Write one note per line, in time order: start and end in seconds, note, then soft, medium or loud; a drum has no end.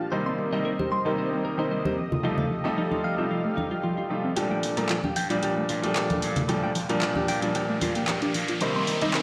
0.00 0.10 F4 medium
0.11 0.49 C3 medium
0.11 0.49 D#3 medium
0.11 0.49 G3 medium
0.11 0.24 G3 medium
0.11 0.49 A#3 medium
0.11 1.96 C4 medium
0.11 0.50 D#4 medium
0.11 1.96 A#4 medium
0.11 0.23 C5 medium
0.11 4.33 D#5 medium
0.26 0.37 C4 loud
0.26 0.32 C6 medium
0.39 0.50 G3 medium
0.52 0.70 C3 medium
0.52 0.71 D#3 medium
0.52 0.71 G3 medium
0.52 0.71 A#3 medium
0.52 0.57 D#4 medium
0.52 0.71 D#4 medium
0.52 0.59 D#5 medium
0.65 0.73 G3 medium
0.65 0.69 A#4 medium
0.79 0.90 G4 loud
0.79 0.89 C5 medium
0.79 high conga medium
0.92 1.00 G3 medium
0.92 1.02 C6 medium
1.05 1.55 C3 medium
1.05 1.55 D#3 medium
1.05 1.55 G3 medium
1.05 1.56 A#3 medium
1.05 1.56 D#4 medium
1.05 1.12 G4 medium
1.05 1.16 A#4 medium
1.18 1.30 G3 medium
1.18 1.29 C5 medium
1.32 1.43 C4 loud
1.45 1.57 G3 medium
1.45 1.55 A#4 medium
1.58 1.96 C3 medium
1.58 1.96 D#3 medium
1.58 1.96 G3 medium
1.58 1.96 A#3 medium
1.58 1.96 D#4 medium
1.58 1.63 D#4 medium
1.58 1.65 C5 medium
1.71 1.79 G3 medium
1.71 1.82 C5 medium
1.85 1.96 G4 loud
1.85 1.95 C5 medium
1.85 high conga medium
1.98 2.06 F3 medium
1.98 4.35 A3 medium
1.98 4.35 G4 medium
1.98 4.35 F5 medium
2.12 2.22 F4 loud
2.12 low conga medium
2.23 2.43 C3 medium
2.23 2.43 F3 medium
2.23 2.36 F3 medium
2.23 2.43 G3 medium
2.23 2.43 A3 medium
2.23 2.43 D#4 medium
2.23 2.35 F4 medium
2.38 2.49 A3 loud
2.38 2.45 F5 medium
2.38 low conga medium
2.51 2.63 F3 medium
2.64 3.14 C3 medium
2.64 3.14 F3 medium
2.64 3.15 G3 medium
2.64 3.15 A3 medium
2.64 2.69 C4 medium
2.64 3.15 D#4 loud
2.64 2.72 A4 medium
2.78 2.85 F3 medium
2.78 2.82 D#4 medium
2.91 3.02 D#4 loud
2.91 3.01 F4 medium
2.91 high conga medium
3.04 3.12 F3 medium
3.04 3.15 F5 medium
3.16 4.07 C3 medium
3.16 4.07 F3 medium
3.16 4.08 G3 medium
3.16 4.08 A3 medium
3.16 3.24 C4 medium
3.16 4.08 D#4 medium
3.16 3.29 F4 loud
3.31 3.43 F3 medium
3.31 3.41 F4 medium
3.45 3.55 A3 medium
3.57 3.65 G3 medium
3.57 3.68 D#4 medium
3.57 high conga medium
3.71 3.76 G3 medium
3.71 3.78 F4 medium
3.83 3.92 F3 loud
3.83 3.94 F4 medium
3.98 4.07 F4 medium
3.98 4.08 F4 medium
4.10 4.29 C3 medium
4.10 4.29 F3 medium
4.10 4.29 G3 medium
4.10 4.29 A3 medium
4.10 4.15 D#4 medium
4.10 4.29 F4 medium
4.24 4.35 C4 medium
4.36 4.65 G1 medium
4.36 4.74 A#2 medium
4.36 4.74 F3 medium
4.36 4.49 F3 medium
4.36 4.74 G3 medium
4.36 4.74 A3 medium
4.36 4.74 D4 medium
4.36 4.47 G4 medium
4.36 8.58 F5 medium
4.36 8.58 A5 medium
4.36 closed hi-hat medium
4.36 riser medium
4.51 4.61 A3 loud
4.51 4.57 G5 medium
4.63 4.73 G2 medium
4.63 4.75 F3 medium
4.63 open hi-hat loud
4.77 4.95 A#2 medium
4.77 4.95 F3 medium
4.77 4.95 G3 medium
4.77 4.95 A3 medium
4.77 4.82 A#3 medium
4.77 4.96 D4 loud
4.77 4.84 A#4 medium
4.77 closed hi-hat soft
4.89 4.98 F3 medium
4.89 4.94 F4 loud
4.89 clap loud
4.89 closed hi-hat medium
5.04 5.15 D4 loud
5.04 5.14 G4 medium
5.04 high conga medium
5.16 5.35 G2 medium
5.16 5.25 F3 medium
5.16 5.27 G5 loud
5.16 open hi-hat loud
5.30 5.80 A#2 medium
5.30 5.80 F3 medium
5.30 5.80 G3 medium
5.30 5.37 D4 loud
5.30 5.81 D4 medium
5.30 5.41 F4 loud
5.30 closed hi-hat soft
5.43 5.62 G1 medium
5.43 5.55 F3 medium
5.43 5.54 G4 medium
5.43 closed hi-hat medium
5.58 5.68 A3 loud
5.69 5.79 G2 medium
5.69 5.82 F3 medium
5.69 5.80 F4 medium
5.69 open hi-hat loud
5.82 6.46 A#2 medium
5.82 6.46 F3 medium
5.82 6.46 G3 medium
5.82 6.46 A3 medium
5.82 5.88 A#3 medium
5.82 6.47 D4 loud
5.82 5.90 G4 medium
5.82 closed hi-hat medium
5.96 6.04 F3 medium
5.96 6.07 G4 medium
5.96 clap loud
5.96 closed hi-hat medium
6.10 6.21 D4 loud
6.10 6.20 G4 medium
6.10 closed hi-hat soft
6.10 high conga medium
6.22 6.41 G2 medium
6.22 6.30 F3 medium
6.22 open hi-hat loud
6.36 6.47 F4 loud
6.36 closed hi-hat medium
6.36 low conga medium
6.48 6.68 A#2 medium
6.48 6.68 F3 medium
6.48 6.61 F3 medium
6.48 6.68 G3 medium
6.48 6.68 A3 medium
6.48 6.68 D4 loud
6.48 6.60 G4 medium
6.48 closed hi-hat medium
6.63 6.74 A3 loud
6.63 6.70 G5 medium
6.75 6.85 G2 medium
6.75 6.87 F3 medium
6.75 open hi-hat loud
6.89 7.39 A#2 medium
6.89 7.40 F3 medium
6.89 7.40 G3 medium
6.89 6.94 A#3 medium
6.89 7.40 D4 loud
6.89 6.96 A#4 medium
6.89 muted slap bass stroke soft
6.89 closed hi-hat soft
7.01 7.12 G1 medium
7.01 7.10 F3 medium
7.01 7.06 F4 loud
7.01 clap loud
7.01 closed hi-hat medium
7.15 7.27 D4 loud
7.15 7.26 G4 medium
7.15 high conga medium
7.28 7.47 G2 medium
7.28 7.37 F3 medium
7.28 7.39 G5 loud
7.28 open hi-hat loud
7.42 8.58 A#2 medium
7.42 8.58 F3 medium
7.42 8.59 G3 medium
7.42 7.49 D4 loud
7.42 8.59 D4 medium
7.42 7.53 F4 loud
7.42 closed hi-hat soft
7.55 7.74 G1 medium
7.55 7.67 F3 medium
7.55 7.66 G4 medium
7.55 closed hi-hat medium
7.69 7.80 A3 loud
7.81 7.92 G2 medium
7.81 7.94 F3 medium
7.81 7.93 F4 medium
7.81 open hi-hat loud
7.81 high conga medium
7.95 8.00 A#3 medium
7.95 8.02 G4 medium
7.95 closed hi-hat soft
8.08 8.18 G1 medium
8.08 8.16 F3 medium
8.08 8.19 G4 medium
8.08 clap loud
8.08 closed hi-hat medium
8.22 8.33 D4 loud
8.22 8.32 G4 medium
8.22 closed hi-hat soft
8.34 8.54 G2 loud
8.34 8.43 F3 medium
8.34 open hi-hat loud
8.48 8.59 F4 medium
8.48 closed hi-hat medium
8.61 8.89 C2 medium
8.61 8.99 C3 medium
8.61 8.99 D#3 medium
8.61 8.99 G3 medium
8.61 8.73 G3 medium
8.61 8.99 A#3 medium
8.61 9.22 C4 medium
8.61 8.99 D#4 medium
8.61 9.22 A#4 medium
8.61 8.72 C5 medium
8.61 9.22 D#5 medium
8.61 closed hi-hat medium
8.76 8.86 C4 loud
8.76 8.82 C6 medium
8.87 8.98 C3 medium
8.87 9.00 G3 medium
8.87 open hi-hat loud
9.01 9.20 C3 medium
9.01 9.20 D#3 medium
9.01 9.20 G3 medium
9.01 9.20 A#3 medium
9.01 9.20 D#4 loud
9.01 9.07 D#4 medium
9.01 9.09 D#5 medium
9.01 closed hi-hat soft
9.14 9.22 G3 medium
9.14 9.19 A#4 loud
9.14 clap loud
9.14 closed hi-hat medium